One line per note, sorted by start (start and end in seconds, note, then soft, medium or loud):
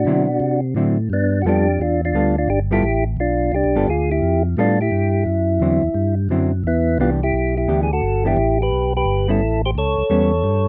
0.00 0.61 D4 medium
0.00 0.60 F#4 medium
0.05 0.39 B2 medium
0.05 0.26 D3 medium
0.05 0.26 F#3 medium
0.05 0.27 C4 medium
0.05 0.27 E4 medium
0.40 0.74 C3 medium
0.75 1.09 A2 medium
0.75 0.96 D3 medium
0.75 0.96 F#3 medium
0.75 0.96 C4 medium
0.75 0.96 E4 medium
1.10 1.44 G2 medium
1.10 1.39 B3 medium
1.10 1.42 D4 medium
1.42 1.78 F2 medium
1.42 1.65 G3 medium
1.42 1.46 F#4 medium
1.46 1.65 B3 medium
1.46 1.79 D4 medium
1.46 1.66 F4 medium
1.46 1.83 G4 medium
1.46 1.66 A4 medium
1.79 2.13 E2 medium
1.79 2.01 D4 medium
1.79 2.01 F4 medium
2.05 2.36 D4 medium
2.05 2.36 F4 medium
2.14 2.48 D2 medium
2.14 2.34 G3 medium
2.14 2.35 B3 medium
2.14 2.35 F4 medium
2.14 2.35 A4 medium
2.38 2.49 D4 medium
2.38 2.50 F4 medium
2.48 2.82 G1 medium
2.48 2.60 D4 medium
2.48 2.60 G4 loud
2.71 2.82 G3 medium
2.71 2.83 B3 medium
2.71 3.04 E4 medium
2.71 2.83 F4 medium
2.71 3.04 G4 loud
2.71 2.83 A4 medium
2.83 3.17 A1 medium
3.17 3.51 B1 medium
3.17 3.52 D4 medium
3.17 3.55 F4 medium
3.52 3.64 C2 medium
3.52 3.87 D4 medium
3.52 3.89 G4 medium
3.64 3.76 B1 medium
3.75 3.87 G1 medium
3.75 3.87 G3 medium
3.75 3.87 B3 medium
3.75 3.87 F4 medium
3.75 3.87 A4 medium
3.88 4.21 D2 medium
3.88 4.10 F4 medium
3.88 4.11 G#4 loud
4.11 4.43 E4 medium
4.11 4.43 G4 loud
4.22 4.56 F2 medium
4.57 4.91 A2 medium
4.57 4.77 G3 medium
4.57 4.78 B3 medium
4.57 4.79 D4 medium
4.57 4.78 F4 medium
4.57 4.79 F4 medium
4.57 4.78 A4 medium
4.81 6.15 E4 medium
4.81 5.24 G4 loud
4.91 5.25 G2 medium
5.26 5.60 F#2 medium
5.60 5.81 E2 medium
5.60 5.81 D3 medium
5.60 5.81 F#3 medium
5.60 5.81 C4 medium
5.60 5.81 E4 medium
5.83 5.89 E2 soft
5.94 6.28 G2 medium
6.29 6.63 F#2 medium
6.29 6.50 D3 medium
6.29 6.50 F#3 medium
6.29 6.50 C4 medium
6.29 6.51 E4 medium
6.63 6.98 E2 medium
6.63 6.98 E4 medium
6.68 6.98 B3 medium
6.98 7.32 C2 medium
6.98 7.19 E3 medium
6.98 7.19 B3 medium
6.98 7.10 B3 medium
6.98 7.20 D4 medium
6.98 7.10 F4 medium
6.98 7.20 G4 medium
7.23 7.55 E4 medium
7.23 7.57 G4 medium
7.33 7.67 B1 medium
7.57 7.81 E4 medium
7.57 7.81 G4 medium
7.67 8.01 D2 medium
7.67 7.88 E3 medium
7.67 7.88 B3 medium
7.67 7.88 D4 medium
7.67 7.89 G4 medium
7.83 7.91 G#4 medium
7.93 8.24 F#4 medium
7.93 8.27 A4 loud
8.02 8.36 G1 medium
8.25 8.36 E3 medium
8.25 8.37 B3 medium
8.25 8.37 D4 medium
8.25 8.58 E4 medium
8.25 8.37 G4 medium
8.25 8.61 G4 medium
8.37 8.71 A1 medium
8.62 8.93 G4 medium
8.62 8.94 B4 loud
8.71 9.05 B1 medium
8.96 9.28 G4 medium
8.96 9.31 B4 loud
9.05 9.40 G1 medium
9.28 9.40 G3 medium
9.28 9.40 B3 medium
9.28 9.40 C#4 medium
9.28 9.62 E4 medium
9.28 9.62 A4 loud
9.40 9.74 A1 medium
9.66 9.71 G4 medium
9.66 9.71 C5 medium
9.75 9.96 C#2 medium
9.75 10.68 A4 medium
9.75 10.68 C#5 loud
9.97 10.04 C#2 soft
10.09 10.43 E2 medium
10.09 10.30 G3 medium
10.09 10.30 B3 medium
10.09 10.31 C#4 medium
10.44 10.68 G2 medium